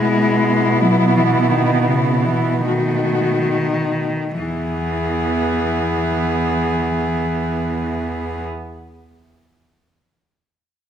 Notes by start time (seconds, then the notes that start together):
Already playing: B2 G#3 B3 E4
0.81 F#3
1.16 E3
1.51 D#3
1.88 C#3
2.26 E3
2.66 D#3 A3 F#4
4.39 E2 E3 B3 G#4